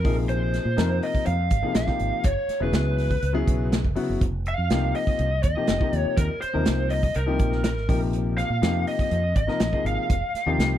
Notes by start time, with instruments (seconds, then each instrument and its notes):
Already playing: lead electric guitar A#4
0.04 fretless electric bass A#1, grand piano C3 F3 A#3 D#4 G#4, kick, open hi-hat
0.29 lead electric guitar C5, closed hi-hat
0.54 snare, closed hi-hat
0.65 fretless electric bass A#2
0.77 fretless electric bass F2, grand piano C3 F3 A#3 D#4 A#4, snare, closed hi-hat
1.03 lead electric guitar D#5, open hi-hat
1.15 kick
1.26 fretless electric bass F2, lead electric guitar F5, closed hi-hat
1.50 fretless electric bass G#1, kick, closed hi-hat
1.63 grand piano C3 F3 A#3 D#4 G#4, muted fretless electric bass stroke
1.75 fretless electric bass A#1, lead electric guitar F5, snare, closed hi-hat
1.86 grand piano C3 F3 A#3 D#4 G4, kick, snare
2.00 fretless electric bass G#1, closed hi-hat
2.12 muted fretless electric bass stroke
2.24 fretless electric bass F#1, lead electric guitar C#5, kick, closed hi-hat
2.48 muted fretless electric bass stroke, snare, closed hi-hat
2.60 fretless electric bass E1, grand piano C#3 F#3 B3 E4 G#4, lead electric guitar B4
2.73 fretless electric bass C#2, snare, closed hi-hat
2.98 snare, open hi-hat
3.11 kick
3.23 fretless electric bass C#2, closed hi-hat
3.33 grand piano C#3 F#3 B3 E4 G#4
3.47 fretless electric bass B1, kick, closed hi-hat
3.72 snare, closed hi-hat
3.84 fretless electric bass F#1, kick
3.95 grand piano C#3 F#3 B3 E4 F#4, open hi-hat
4.10 fretless electric bass F#1
4.21 fretless electric bass F1, kick, closed hi-hat
4.46 lead electric guitar F5, closed hi-hat
4.58 fretless electric bass F2
4.70 fretless electric bass C2, grand piano C3 F3 A#3 D#4 G4, snare, closed hi-hat
4.95 lead electric guitar D#5, open hi-hat
5.07 kick
5.19 fretless electric bass C2, closed hi-hat
5.43 fretless electric bass D#2, lead electric guitar D#5, kick, closed hi-hat
5.57 grand piano C3 F3 A#3 D#4 G4, muted fretless electric bass stroke
5.67 fretless electric bass F1, snare, closed hi-hat
5.80 grand piano C3 F3 A#3 D#4 G4, kick
5.93 fretless electric bass D#2, closed hi-hat
6.00 lead electric guitar C#5
6.05 muted fretless electric bass stroke
6.17 fretless electric bass D#2, lead electric guitar A#4, kick, closed hi-hat
6.42 lead electric guitar C5, muted fretless electric bass stroke, closed hi-hat
6.53 fretless electric bass D#2, grand piano C3 F3 A#3 D#4 A#4
6.66 fretless electric bass C2, snare, closed hi-hat
6.90 lead electric guitar D#5, open hi-hat
7.03 kick
7.15 fretless electric bass C2, lead electric guitar A#4, closed hi-hat
7.26 grand piano C3 F3 A#3 D#4 G4
7.39 fretless electric bass A#1, kick, closed hi-hat
7.52 snare
7.64 lead electric guitar A#4, snare, closed hi-hat
7.77 fretless electric bass G#1, snare
7.88 fretless electric bass A#1, grand piano C3 F3 A#3 D#4 G4, kick, open hi-hat
8.13 closed hi-hat
8.38 lead electric guitar F5, snare, closed hi-hat
8.50 fretless electric bass A#2
8.62 fretless electric bass F2, grand piano C3 F3 A#3 D#4 G4, snare, closed hi-hat
8.87 lead electric guitar D#5, open hi-hat
8.99 kick
9.11 fretless electric bass F2, closed hi-hat
9.36 fretless electric bass G#1, lead electric guitar D#5, kick, closed hi-hat
9.47 grand piano C3 F3 A#3 D#4 A#4, muted fretless electric bass stroke, snare
9.60 fretless electric bass A#1, snare, closed hi-hat
9.72 grand piano C3 F3 A#3 D#4 G#4, kick
9.85 fretless electric bass G#1, lead electric guitar F5, closed hi-hat
10.10 fretless electric bass F1, kick, closed hi-hat
10.34 muted fretless electric bass stroke, snare, closed hi-hat
10.46 fretless electric bass D#2, grand piano C3 F3 A#3 D#4 G4
10.59 fretless electric bass C2, snare, closed hi-hat